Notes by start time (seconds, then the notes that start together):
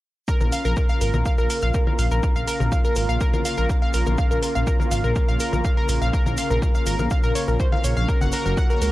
0.28 C#3 A#3 F4 A#4, kick, cabasa
0.36 C#5
0.41 A#1 A#4, low conga, cabasa
0.52 F5, open hi-hat, cabasa
0.65 A#1 A#4, cabasa
0.76 A#4 A#5, kick, cabasa
0.89 F5, cabasa
1.01 G#1 A#4, open hi-hat, cabasa
1.13 A#1 A#4, low conga, cabasa
1.25 F5, kick, cabasa
1.38 A#1 A#4, cabasa
1.50 A#4, open hi-hat, cabasa
1.61 A#1 F5, cabasa
1.74 A#4, kick, cabasa
1.87 A#4, low conga
1.99 A#1 F5, open hi-hat, cabasa
2.11 A#1 A#4, cabasa
2.23 A#4, kick, cabasa
2.36 A#1 F5, cabasa
2.47 A#4, open hi-hat, cabasa
2.60 A#1 A#4, low conga, cabasa
2.72 F5, kick, cabasa
2.85 A#4, cabasa
2.96 G#1 A#4, open hi-hat, cabasa
3.09 A#1 F5, cabasa
3.21 A#4, kick, cabasa
3.33 A#1 A#4, low conga, cabasa
3.45 F5, open hi-hat, cabasa
3.57 A#1 A#4, cabasa
3.69 A#4, kick, cabasa
3.82 F5
3.94 A#1 A#4, open hi-hat, cabasa
4.06 A#1 A#4, low conga, cabasa
4.18 F5, kick, cabasa
4.31 A#1 A#4, cabasa
4.43 A#4, open hi-hat, cabasa
4.55 A#1 F5, cabasa
4.67 A#4, kick, cabasa
4.80 A#4, low conga, cabasa
4.91 G#1 F5, open hi-hat, cabasa
5.04 A#1 A#4, cabasa
5.16 A#4, kick, cabasa
5.29 A#1 F5, cabasa
5.40 A#4, open hi-hat, cabasa
5.53 A#1 A#4, low conga, cabasa
5.64 F5, kick, cabasa
5.77 A#4
5.89 A#1 A#4, open hi-hat, cabasa
6.02 A#1 F5, cabasa
6.13 A#4, kick, cabasa
6.26 A#1 A#4, low conga, cabasa
6.37 F5, open hi-hat, cabasa
6.50 A#1 A#4, cabasa
6.62 A#4, kick, cabasa
6.75 F5, cabasa
6.86 G#1 A#4, open hi-hat, cabasa
6.99 A#1 A#4, low conga, cabasa
7.10 F5, kick, cabasa
7.23 A#1 A#4, cabasa
7.35 C#5, open hi-hat, cabasa
7.48 A#1 A#4, cabasa
7.60 C5, kick, cabasa
7.72 F5, low conga
7.84 A#1 C#5, open hi-hat, cabasa
7.97 A#1 F5, cabasa
8.08 A#3 F#4 A#4, kick, cabasa
8.21 F#1 F#5, low conga, cabasa
8.32 A#4, open hi-hat, cabasa
8.46 F#1 A#4, cabasa
8.57 F#5, kick, cabasa
8.70 A#4, cabasa
8.82 C#2 A#4, open hi-hat, cabasa